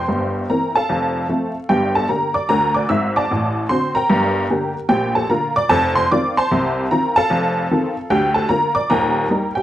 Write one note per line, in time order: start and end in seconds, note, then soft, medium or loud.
0.00 0.45 C5 medium
0.00 0.45 G5 medium
0.00 0.40 C6 medium
0.08 0.43 G1 medium
0.08 0.43 G2 medium
0.50 0.71 E3 soft
0.50 0.72 A#3 soft
0.50 0.72 C4 soft
0.50 0.74 A#4 medium
0.50 0.71 A#5 medium
0.75 1.66 A4 medium
0.75 1.66 F5 medium
0.75 1.56 A5 medium
0.89 1.23 F1 medium
0.89 1.23 F2 medium
1.29 1.51 F3 soft
1.29 1.51 A3 soft
1.29 1.51 C4 soft
1.69 2.03 G1 medium
1.69 2.03 G2 medium
1.69 1.94 G4 medium
1.69 1.91 G5 medium
1.95 2.09 A4 medium
1.95 2.07 A5 medium
2.09 2.31 D3 soft
2.09 2.31 A#3 soft
2.09 2.32 G4 soft
2.09 2.34 A#4 medium
2.09 2.31 A#5 medium
2.34 2.48 D5 medium
2.34 2.47 D6 medium
2.49 2.84 D2 medium
2.49 2.84 D3 medium
2.49 2.74 A#4 medium
2.49 2.71 A#5 loud
2.74 2.89 D5 medium
2.74 2.87 D6 medium
2.89 3.22 G#1 medium
2.89 3.22 G#2 medium
2.89 3.14 E5 medium
2.89 3.11 E6 medium
3.16 3.67 D5 medium
3.16 3.67 A5 medium
3.16 3.62 D6 medium
3.31 3.65 A1 medium
3.31 3.65 A2 medium
3.69 3.92 D3 soft
3.69 3.92 C4 soft
3.69 3.93 F#4 soft
3.69 3.94 C5 medium
3.69 3.92 C6 medium
3.95 4.86 A#4 medium
3.95 4.87 G5 medium
3.95 4.75 A#5 loud
4.10 4.44 G1 medium
4.10 4.44 G2 medium
4.50 4.72 D3 soft
4.50 4.72 A#3 soft
4.50 4.73 G4 medium
4.89 5.23 A#1 medium
4.89 5.23 A#2 medium
4.89 5.14 G4 medium
4.89 5.11 G5 loud
5.15 5.29 A4 medium
5.15 5.28 A5 medium
5.30 5.52 D3 soft
5.30 5.52 A#3 soft
5.30 5.53 F4 medium
5.30 5.55 A#4 medium
5.30 5.52 A#5 medium
5.56 5.70 D5 medium
5.56 5.68 D6 loud
5.69 6.04 F1 medium
5.69 6.04 F2 medium
5.69 5.95 A4 medium
5.69 5.92 A5 loud
5.96 6.10 C5 medium
5.96 6.08 C6 loud
6.12 6.33 D#3 medium
6.12 6.33 C4 medium
6.12 6.34 F4 medium
6.12 6.35 D5 medium
6.12 6.33 D6 loud
6.37 6.87 C5 medium
6.37 6.87 A5 medium
6.37 6.83 C6 medium
6.51 6.85 C2 medium
6.51 6.85 C3 medium
6.91 7.13 D#3 medium
6.91 7.13 C4 medium
6.91 7.13 F4 medium
6.91 7.15 A#4 medium
6.91 7.12 A#5 medium
7.16 8.07 A4 medium
7.16 8.07 F5 medium
7.16 7.96 A5 loud
7.30 7.64 F1 medium
7.30 7.64 F2 medium
7.71 7.93 D#3 medium
7.71 7.93 C4 medium
7.71 7.94 F4 soft
8.10 8.44 D2 medium
8.10 8.44 D3 medium
8.10 8.34 G4 medium
8.10 8.32 G5 loud
8.34 8.49 A4 medium
8.34 8.47 A5 medium
8.49 8.71 D3 soft
8.49 8.72 A#3 soft
8.49 8.72 F4 soft
8.49 8.74 A#4 medium
8.49 8.71 A#5 medium
8.75 8.89 D5 medium
8.75 8.87 D6 loud
8.90 9.24 D#1 medium
8.90 9.24 D#2 medium
8.90 9.52 A#4 medium
8.90 9.52 G5 medium
8.90 9.46 A#5 medium
9.30 9.52 G3 medium
9.30 9.52 A#3 soft
9.30 9.53 D#4 soft
9.55 9.63 G4 medium
9.55 9.63 G5 medium